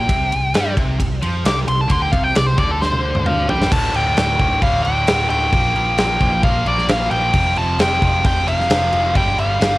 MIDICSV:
0, 0, Header, 1, 5, 480
1, 0, Start_track
1, 0, Key_signature, -1, "minor"
1, 0, Tempo, 453172
1, 96, Time_signature, 4, 2, 24, 8
1, 10360, End_track
2, 0, Start_track
2, 0, Title_t, "Lead electric guitar"
2, 0, Program_c, 0, 29
2, 0, Note_on_c, 0, 79, 121
2, 787, Note_off_c, 0, 79, 0
2, 1549, Note_on_c, 0, 86, 116
2, 1658, Note_off_c, 0, 86, 0
2, 1784, Note_on_c, 0, 84, 107
2, 1915, Note_off_c, 0, 84, 0
2, 1915, Note_on_c, 0, 81, 98
2, 2025, Note_off_c, 0, 81, 0
2, 2025, Note_on_c, 0, 84, 102
2, 2136, Note_off_c, 0, 84, 0
2, 2139, Note_on_c, 0, 79, 107
2, 2242, Note_off_c, 0, 79, 0
2, 2242, Note_on_c, 0, 77, 96
2, 2368, Note_off_c, 0, 77, 0
2, 2368, Note_on_c, 0, 79, 99
2, 2488, Note_off_c, 0, 79, 0
2, 2505, Note_on_c, 0, 74, 89
2, 2610, Note_off_c, 0, 74, 0
2, 2610, Note_on_c, 0, 72, 106
2, 2728, Note_off_c, 0, 72, 0
2, 2743, Note_on_c, 0, 74, 106
2, 2855, Note_off_c, 0, 74, 0
2, 2871, Note_on_c, 0, 69, 76
2, 2979, Note_off_c, 0, 69, 0
2, 2981, Note_on_c, 0, 72, 113
2, 3457, Note_on_c, 0, 77, 105
2, 3699, Note_off_c, 0, 77, 0
2, 3703, Note_on_c, 0, 79, 107
2, 3909, Note_off_c, 0, 72, 0
2, 3939, Note_on_c, 0, 81, 112
2, 3946, Note_off_c, 0, 79, 0
2, 4184, Note_off_c, 0, 81, 0
2, 4189, Note_on_c, 0, 79, 106
2, 4417, Note_off_c, 0, 79, 0
2, 4430, Note_on_c, 0, 79, 87
2, 4900, Note_off_c, 0, 79, 0
2, 4905, Note_on_c, 0, 77, 101
2, 5111, Note_off_c, 0, 77, 0
2, 5116, Note_on_c, 0, 79, 110
2, 5598, Note_off_c, 0, 79, 0
2, 5610, Note_on_c, 0, 79, 123
2, 6817, Note_off_c, 0, 79, 0
2, 6822, Note_on_c, 0, 77, 111
2, 7066, Note_off_c, 0, 77, 0
2, 7072, Note_on_c, 0, 74, 95
2, 7310, Note_off_c, 0, 74, 0
2, 7315, Note_on_c, 0, 77, 101
2, 7528, Note_off_c, 0, 77, 0
2, 7532, Note_on_c, 0, 79, 109
2, 8024, Note_on_c, 0, 81, 90
2, 8028, Note_off_c, 0, 79, 0
2, 8267, Note_off_c, 0, 81, 0
2, 8269, Note_on_c, 0, 79, 92
2, 8735, Note_off_c, 0, 79, 0
2, 8747, Note_on_c, 0, 79, 108
2, 8979, Note_off_c, 0, 79, 0
2, 8983, Note_on_c, 0, 77, 109
2, 9705, Note_off_c, 0, 77, 0
2, 9709, Note_on_c, 0, 79, 103
2, 9948, Note_off_c, 0, 79, 0
2, 9952, Note_on_c, 0, 77, 101
2, 10360, Note_off_c, 0, 77, 0
2, 10360, End_track
3, 0, Start_track
3, 0, Title_t, "Distorted electric guitar"
3, 0, Program_c, 1, 30
3, 93, Note_on_c, 1, 48, 118
3, 327, Note_off_c, 1, 48, 0
3, 341, Note_on_c, 1, 48, 67
3, 530, Note_off_c, 1, 48, 0
3, 577, Note_on_c, 1, 55, 96
3, 809, Note_off_c, 1, 55, 0
3, 813, Note_on_c, 1, 48, 105
3, 1037, Note_off_c, 1, 48, 0
3, 1049, Note_on_c, 1, 48, 73
3, 1244, Note_off_c, 1, 48, 0
3, 1292, Note_on_c, 1, 53, 99
3, 1526, Note_off_c, 1, 53, 0
3, 1526, Note_on_c, 1, 48, 115
3, 1744, Note_off_c, 1, 48, 0
3, 1757, Note_on_c, 1, 48, 76
3, 1958, Note_off_c, 1, 48, 0
3, 1996, Note_on_c, 1, 50, 118
3, 2238, Note_off_c, 1, 50, 0
3, 2244, Note_on_c, 1, 48, 99
3, 2475, Note_off_c, 1, 48, 0
3, 2488, Note_on_c, 1, 48, 83
3, 2683, Note_off_c, 1, 48, 0
3, 2727, Note_on_c, 1, 50, 103
3, 3683, Note_off_c, 1, 50, 0
3, 3690, Note_on_c, 1, 55, 97
3, 3925, Note_off_c, 1, 55, 0
3, 3928, Note_on_c, 1, 38, 93
3, 3938, Note_on_c, 1, 45, 107
3, 3946, Note_on_c, 1, 50, 110
3, 4155, Note_off_c, 1, 38, 0
3, 4163, Note_off_c, 1, 45, 0
3, 4168, Note_on_c, 1, 38, 79
3, 4170, Note_off_c, 1, 50, 0
3, 4175, Note_on_c, 1, 45, 86
3, 4182, Note_on_c, 1, 50, 100
3, 4394, Note_off_c, 1, 38, 0
3, 4403, Note_off_c, 1, 45, 0
3, 4407, Note_on_c, 1, 38, 88
3, 4411, Note_off_c, 1, 50, 0
3, 4416, Note_on_c, 1, 45, 93
3, 4423, Note_on_c, 1, 50, 89
3, 4646, Note_off_c, 1, 38, 0
3, 4653, Note_off_c, 1, 45, 0
3, 4659, Note_on_c, 1, 38, 105
3, 4660, Note_off_c, 1, 50, 0
3, 4666, Note_on_c, 1, 45, 93
3, 4673, Note_on_c, 1, 50, 102
3, 4871, Note_off_c, 1, 38, 0
3, 4883, Note_off_c, 1, 45, 0
3, 4884, Note_on_c, 1, 38, 81
3, 4887, Note_off_c, 1, 50, 0
3, 4896, Note_on_c, 1, 45, 89
3, 4900, Note_on_c, 1, 50, 86
3, 5111, Note_off_c, 1, 38, 0
3, 5119, Note_off_c, 1, 45, 0
3, 5124, Note_on_c, 1, 38, 94
3, 5128, Note_off_c, 1, 50, 0
3, 5132, Note_on_c, 1, 45, 102
3, 5141, Note_on_c, 1, 50, 114
3, 5362, Note_off_c, 1, 38, 0
3, 5368, Note_off_c, 1, 45, 0
3, 5374, Note_off_c, 1, 50, 0
3, 5374, Note_on_c, 1, 38, 87
3, 5381, Note_on_c, 1, 45, 90
3, 5387, Note_on_c, 1, 50, 106
3, 5595, Note_off_c, 1, 38, 0
3, 5607, Note_off_c, 1, 45, 0
3, 5608, Note_on_c, 1, 38, 85
3, 5610, Note_off_c, 1, 50, 0
3, 5619, Note_on_c, 1, 45, 96
3, 5623, Note_on_c, 1, 50, 93
3, 5837, Note_off_c, 1, 38, 0
3, 5843, Note_off_c, 1, 45, 0
3, 5844, Note_off_c, 1, 50, 0
3, 5851, Note_on_c, 1, 46, 104
3, 5858, Note_on_c, 1, 53, 121
3, 5868, Note_on_c, 1, 58, 116
3, 6076, Note_off_c, 1, 46, 0
3, 6087, Note_off_c, 1, 58, 0
3, 6088, Note_on_c, 1, 46, 91
3, 6091, Note_off_c, 1, 53, 0
3, 6095, Note_on_c, 1, 53, 91
3, 6100, Note_on_c, 1, 58, 98
3, 6317, Note_off_c, 1, 46, 0
3, 6330, Note_on_c, 1, 46, 84
3, 6335, Note_off_c, 1, 53, 0
3, 6337, Note_off_c, 1, 58, 0
3, 6339, Note_on_c, 1, 53, 92
3, 6350, Note_on_c, 1, 58, 104
3, 6556, Note_off_c, 1, 46, 0
3, 6569, Note_on_c, 1, 46, 101
3, 6574, Note_off_c, 1, 58, 0
3, 6576, Note_off_c, 1, 53, 0
3, 6580, Note_on_c, 1, 53, 112
3, 6587, Note_on_c, 1, 58, 107
3, 6799, Note_off_c, 1, 46, 0
3, 6809, Note_off_c, 1, 53, 0
3, 6812, Note_on_c, 1, 46, 85
3, 6816, Note_off_c, 1, 58, 0
3, 6822, Note_on_c, 1, 53, 92
3, 6829, Note_on_c, 1, 58, 103
3, 7044, Note_off_c, 1, 46, 0
3, 7051, Note_off_c, 1, 53, 0
3, 7057, Note_on_c, 1, 46, 91
3, 7058, Note_off_c, 1, 58, 0
3, 7064, Note_on_c, 1, 53, 105
3, 7071, Note_on_c, 1, 58, 121
3, 7276, Note_off_c, 1, 46, 0
3, 7288, Note_off_c, 1, 53, 0
3, 7289, Note_on_c, 1, 46, 83
3, 7295, Note_off_c, 1, 58, 0
3, 7301, Note_on_c, 1, 53, 94
3, 7307, Note_on_c, 1, 58, 90
3, 7514, Note_off_c, 1, 46, 0
3, 7527, Note_on_c, 1, 46, 94
3, 7530, Note_off_c, 1, 53, 0
3, 7533, Note_off_c, 1, 58, 0
3, 7542, Note_on_c, 1, 53, 88
3, 7545, Note_on_c, 1, 58, 87
3, 7757, Note_off_c, 1, 46, 0
3, 7764, Note_off_c, 1, 53, 0
3, 7766, Note_off_c, 1, 58, 0
3, 7773, Note_on_c, 1, 41, 108
3, 7778, Note_on_c, 1, 48, 114
3, 7784, Note_on_c, 1, 53, 119
3, 7996, Note_off_c, 1, 41, 0
3, 8003, Note_off_c, 1, 48, 0
3, 8009, Note_on_c, 1, 41, 86
3, 8012, Note_off_c, 1, 53, 0
3, 8016, Note_on_c, 1, 48, 90
3, 8025, Note_on_c, 1, 53, 95
3, 8247, Note_off_c, 1, 41, 0
3, 8259, Note_off_c, 1, 48, 0
3, 8260, Note_on_c, 1, 41, 92
3, 8263, Note_off_c, 1, 53, 0
3, 8272, Note_on_c, 1, 48, 105
3, 8276, Note_on_c, 1, 53, 103
3, 8482, Note_off_c, 1, 41, 0
3, 8490, Note_off_c, 1, 48, 0
3, 8495, Note_on_c, 1, 41, 99
3, 8498, Note_off_c, 1, 53, 0
3, 8503, Note_on_c, 1, 48, 96
3, 8511, Note_on_c, 1, 53, 114
3, 8731, Note_off_c, 1, 41, 0
3, 8739, Note_off_c, 1, 48, 0
3, 8744, Note_on_c, 1, 41, 86
3, 8745, Note_off_c, 1, 53, 0
3, 8752, Note_on_c, 1, 48, 99
3, 8757, Note_on_c, 1, 53, 95
3, 8961, Note_off_c, 1, 41, 0
3, 8972, Note_off_c, 1, 48, 0
3, 8973, Note_on_c, 1, 41, 94
3, 8980, Note_off_c, 1, 53, 0
3, 8985, Note_on_c, 1, 48, 100
3, 8993, Note_on_c, 1, 53, 106
3, 9198, Note_off_c, 1, 41, 0
3, 9203, Note_off_c, 1, 48, 0
3, 9210, Note_on_c, 1, 41, 85
3, 9214, Note_off_c, 1, 53, 0
3, 9216, Note_on_c, 1, 48, 89
3, 9227, Note_on_c, 1, 53, 90
3, 9432, Note_off_c, 1, 41, 0
3, 9445, Note_off_c, 1, 48, 0
3, 9445, Note_on_c, 1, 41, 82
3, 9451, Note_off_c, 1, 53, 0
3, 9458, Note_on_c, 1, 48, 99
3, 9463, Note_on_c, 1, 53, 96
3, 9675, Note_off_c, 1, 41, 0
3, 9682, Note_off_c, 1, 48, 0
3, 9683, Note_on_c, 1, 43, 102
3, 9684, Note_off_c, 1, 53, 0
3, 9688, Note_on_c, 1, 50, 116
3, 9700, Note_on_c, 1, 55, 106
3, 9910, Note_off_c, 1, 43, 0
3, 9919, Note_off_c, 1, 50, 0
3, 9923, Note_on_c, 1, 43, 81
3, 9926, Note_off_c, 1, 55, 0
3, 9932, Note_on_c, 1, 50, 78
3, 9939, Note_on_c, 1, 55, 85
3, 10147, Note_off_c, 1, 43, 0
3, 10155, Note_off_c, 1, 50, 0
3, 10159, Note_on_c, 1, 43, 87
3, 10165, Note_off_c, 1, 55, 0
3, 10167, Note_on_c, 1, 50, 84
3, 10177, Note_on_c, 1, 55, 102
3, 10360, Note_off_c, 1, 43, 0
3, 10360, Note_off_c, 1, 50, 0
3, 10360, Note_off_c, 1, 55, 0
3, 10360, End_track
4, 0, Start_track
4, 0, Title_t, "Picked electric bass"
4, 0, Program_c, 2, 34
4, 97, Note_on_c, 2, 36, 97
4, 320, Note_off_c, 2, 36, 0
4, 342, Note_on_c, 2, 36, 80
4, 562, Note_off_c, 2, 36, 0
4, 580, Note_on_c, 2, 43, 107
4, 801, Note_off_c, 2, 43, 0
4, 817, Note_on_c, 2, 36, 115
4, 1039, Note_off_c, 2, 36, 0
4, 1057, Note_on_c, 2, 36, 76
4, 1279, Note_off_c, 2, 36, 0
4, 1296, Note_on_c, 2, 41, 97
4, 1518, Note_off_c, 2, 41, 0
4, 1533, Note_on_c, 2, 36, 99
4, 1757, Note_off_c, 2, 36, 0
4, 1769, Note_on_c, 2, 36, 89
4, 1995, Note_off_c, 2, 36, 0
4, 2014, Note_on_c, 2, 38, 103
4, 2237, Note_off_c, 2, 38, 0
4, 2254, Note_on_c, 2, 36, 102
4, 2477, Note_off_c, 2, 36, 0
4, 2497, Note_on_c, 2, 36, 88
4, 2719, Note_off_c, 2, 36, 0
4, 2733, Note_on_c, 2, 38, 104
4, 3651, Note_off_c, 2, 38, 0
4, 3690, Note_on_c, 2, 43, 104
4, 3915, Note_off_c, 2, 43, 0
4, 3935, Note_on_c, 2, 26, 98
4, 4136, Note_off_c, 2, 26, 0
4, 4168, Note_on_c, 2, 26, 89
4, 4372, Note_off_c, 2, 26, 0
4, 4412, Note_on_c, 2, 26, 100
4, 4615, Note_off_c, 2, 26, 0
4, 4655, Note_on_c, 2, 26, 99
4, 4856, Note_off_c, 2, 26, 0
4, 4896, Note_on_c, 2, 26, 83
4, 5097, Note_off_c, 2, 26, 0
4, 5137, Note_on_c, 2, 26, 96
4, 5338, Note_off_c, 2, 26, 0
4, 5380, Note_on_c, 2, 26, 94
4, 5579, Note_off_c, 2, 26, 0
4, 5612, Note_on_c, 2, 26, 95
4, 5815, Note_off_c, 2, 26, 0
4, 5858, Note_on_c, 2, 34, 98
4, 6058, Note_off_c, 2, 34, 0
4, 6087, Note_on_c, 2, 34, 94
4, 6292, Note_off_c, 2, 34, 0
4, 6324, Note_on_c, 2, 34, 104
4, 6530, Note_off_c, 2, 34, 0
4, 6573, Note_on_c, 2, 34, 105
4, 6775, Note_off_c, 2, 34, 0
4, 6816, Note_on_c, 2, 34, 92
4, 7017, Note_off_c, 2, 34, 0
4, 7049, Note_on_c, 2, 34, 83
4, 7253, Note_off_c, 2, 34, 0
4, 7285, Note_on_c, 2, 34, 96
4, 7491, Note_off_c, 2, 34, 0
4, 7533, Note_on_c, 2, 34, 94
4, 7735, Note_off_c, 2, 34, 0
4, 7771, Note_on_c, 2, 29, 105
4, 7974, Note_off_c, 2, 29, 0
4, 8012, Note_on_c, 2, 29, 86
4, 8215, Note_off_c, 2, 29, 0
4, 8247, Note_on_c, 2, 29, 111
4, 8452, Note_off_c, 2, 29, 0
4, 8494, Note_on_c, 2, 29, 104
4, 8696, Note_off_c, 2, 29, 0
4, 8733, Note_on_c, 2, 29, 91
4, 8935, Note_off_c, 2, 29, 0
4, 8976, Note_on_c, 2, 29, 92
4, 9177, Note_off_c, 2, 29, 0
4, 9212, Note_on_c, 2, 29, 94
4, 9414, Note_off_c, 2, 29, 0
4, 9455, Note_on_c, 2, 29, 96
4, 9656, Note_off_c, 2, 29, 0
4, 9696, Note_on_c, 2, 31, 100
4, 9897, Note_off_c, 2, 31, 0
4, 9930, Note_on_c, 2, 31, 88
4, 10133, Note_off_c, 2, 31, 0
4, 10176, Note_on_c, 2, 31, 101
4, 10360, Note_off_c, 2, 31, 0
4, 10360, End_track
5, 0, Start_track
5, 0, Title_t, "Drums"
5, 97, Note_on_c, 9, 36, 116
5, 97, Note_on_c, 9, 51, 104
5, 203, Note_off_c, 9, 36, 0
5, 203, Note_off_c, 9, 51, 0
5, 341, Note_on_c, 9, 51, 75
5, 447, Note_off_c, 9, 51, 0
5, 575, Note_on_c, 9, 51, 99
5, 586, Note_on_c, 9, 38, 113
5, 681, Note_off_c, 9, 51, 0
5, 692, Note_off_c, 9, 38, 0
5, 816, Note_on_c, 9, 36, 104
5, 817, Note_on_c, 9, 51, 73
5, 922, Note_off_c, 9, 36, 0
5, 923, Note_off_c, 9, 51, 0
5, 1057, Note_on_c, 9, 36, 86
5, 1060, Note_on_c, 9, 51, 103
5, 1162, Note_off_c, 9, 36, 0
5, 1166, Note_off_c, 9, 51, 0
5, 1297, Note_on_c, 9, 51, 78
5, 1403, Note_off_c, 9, 51, 0
5, 1539, Note_on_c, 9, 51, 109
5, 1550, Note_on_c, 9, 38, 107
5, 1645, Note_off_c, 9, 51, 0
5, 1656, Note_off_c, 9, 38, 0
5, 1776, Note_on_c, 9, 51, 74
5, 1882, Note_off_c, 9, 51, 0
5, 2009, Note_on_c, 9, 51, 97
5, 2012, Note_on_c, 9, 36, 99
5, 2115, Note_off_c, 9, 51, 0
5, 2118, Note_off_c, 9, 36, 0
5, 2254, Note_on_c, 9, 36, 106
5, 2255, Note_on_c, 9, 51, 69
5, 2360, Note_off_c, 9, 36, 0
5, 2361, Note_off_c, 9, 51, 0
5, 2492, Note_on_c, 9, 51, 89
5, 2503, Note_on_c, 9, 38, 117
5, 2598, Note_off_c, 9, 51, 0
5, 2608, Note_off_c, 9, 38, 0
5, 2730, Note_on_c, 9, 51, 70
5, 2733, Note_on_c, 9, 36, 113
5, 2836, Note_off_c, 9, 51, 0
5, 2839, Note_off_c, 9, 36, 0
5, 2987, Note_on_c, 9, 38, 62
5, 3093, Note_off_c, 9, 38, 0
5, 3093, Note_on_c, 9, 48, 58
5, 3199, Note_off_c, 9, 48, 0
5, 3336, Note_on_c, 9, 47, 74
5, 3442, Note_off_c, 9, 47, 0
5, 3453, Note_on_c, 9, 45, 95
5, 3559, Note_off_c, 9, 45, 0
5, 3697, Note_on_c, 9, 43, 99
5, 3803, Note_off_c, 9, 43, 0
5, 3830, Note_on_c, 9, 38, 91
5, 3936, Note_off_c, 9, 38, 0
5, 3937, Note_on_c, 9, 36, 127
5, 3941, Note_on_c, 9, 49, 115
5, 3941, Note_on_c, 9, 57, 88
5, 4043, Note_off_c, 9, 36, 0
5, 4047, Note_off_c, 9, 49, 0
5, 4047, Note_off_c, 9, 57, 0
5, 4176, Note_on_c, 9, 57, 65
5, 4282, Note_off_c, 9, 57, 0
5, 4414, Note_on_c, 9, 57, 87
5, 4424, Note_on_c, 9, 38, 113
5, 4520, Note_off_c, 9, 57, 0
5, 4530, Note_off_c, 9, 38, 0
5, 4653, Note_on_c, 9, 57, 63
5, 4654, Note_on_c, 9, 36, 90
5, 4759, Note_off_c, 9, 57, 0
5, 4760, Note_off_c, 9, 36, 0
5, 4892, Note_on_c, 9, 57, 92
5, 4893, Note_on_c, 9, 36, 110
5, 4998, Note_off_c, 9, 57, 0
5, 4999, Note_off_c, 9, 36, 0
5, 5132, Note_on_c, 9, 57, 67
5, 5238, Note_off_c, 9, 57, 0
5, 5371, Note_on_c, 9, 57, 89
5, 5382, Note_on_c, 9, 38, 118
5, 5477, Note_off_c, 9, 57, 0
5, 5488, Note_off_c, 9, 38, 0
5, 5614, Note_on_c, 9, 57, 68
5, 5720, Note_off_c, 9, 57, 0
5, 5851, Note_on_c, 9, 57, 89
5, 5854, Note_on_c, 9, 36, 116
5, 5957, Note_off_c, 9, 57, 0
5, 5960, Note_off_c, 9, 36, 0
5, 6098, Note_on_c, 9, 57, 62
5, 6204, Note_off_c, 9, 57, 0
5, 6330, Note_on_c, 9, 57, 82
5, 6341, Note_on_c, 9, 38, 108
5, 6436, Note_off_c, 9, 57, 0
5, 6447, Note_off_c, 9, 38, 0
5, 6573, Note_on_c, 9, 57, 62
5, 6574, Note_on_c, 9, 36, 91
5, 6679, Note_off_c, 9, 57, 0
5, 6680, Note_off_c, 9, 36, 0
5, 6814, Note_on_c, 9, 36, 118
5, 6814, Note_on_c, 9, 57, 80
5, 6920, Note_off_c, 9, 36, 0
5, 6920, Note_off_c, 9, 57, 0
5, 7055, Note_on_c, 9, 57, 64
5, 7161, Note_off_c, 9, 57, 0
5, 7184, Note_on_c, 9, 38, 35
5, 7290, Note_off_c, 9, 38, 0
5, 7293, Note_on_c, 9, 57, 93
5, 7304, Note_on_c, 9, 38, 116
5, 7399, Note_off_c, 9, 57, 0
5, 7410, Note_off_c, 9, 38, 0
5, 7531, Note_on_c, 9, 57, 69
5, 7637, Note_off_c, 9, 57, 0
5, 7768, Note_on_c, 9, 57, 96
5, 7773, Note_on_c, 9, 36, 106
5, 7874, Note_off_c, 9, 57, 0
5, 7879, Note_off_c, 9, 36, 0
5, 8010, Note_on_c, 9, 57, 64
5, 8116, Note_off_c, 9, 57, 0
5, 8251, Note_on_c, 9, 57, 88
5, 8262, Note_on_c, 9, 38, 106
5, 8357, Note_off_c, 9, 57, 0
5, 8368, Note_off_c, 9, 38, 0
5, 8494, Note_on_c, 9, 57, 70
5, 8495, Note_on_c, 9, 36, 88
5, 8599, Note_off_c, 9, 57, 0
5, 8601, Note_off_c, 9, 36, 0
5, 8734, Note_on_c, 9, 57, 94
5, 8735, Note_on_c, 9, 36, 125
5, 8840, Note_off_c, 9, 57, 0
5, 8841, Note_off_c, 9, 36, 0
5, 8978, Note_on_c, 9, 57, 77
5, 9084, Note_off_c, 9, 57, 0
5, 9110, Note_on_c, 9, 38, 38
5, 9212, Note_on_c, 9, 57, 92
5, 9216, Note_off_c, 9, 38, 0
5, 9223, Note_on_c, 9, 38, 116
5, 9318, Note_off_c, 9, 57, 0
5, 9329, Note_off_c, 9, 38, 0
5, 9452, Note_on_c, 9, 57, 72
5, 9558, Note_off_c, 9, 57, 0
5, 9694, Note_on_c, 9, 36, 113
5, 9696, Note_on_c, 9, 57, 89
5, 9800, Note_off_c, 9, 36, 0
5, 9802, Note_off_c, 9, 57, 0
5, 9938, Note_on_c, 9, 57, 65
5, 10044, Note_off_c, 9, 57, 0
5, 10180, Note_on_c, 9, 57, 86
5, 10191, Note_on_c, 9, 38, 108
5, 10286, Note_off_c, 9, 57, 0
5, 10297, Note_off_c, 9, 38, 0
5, 10360, End_track
0, 0, End_of_file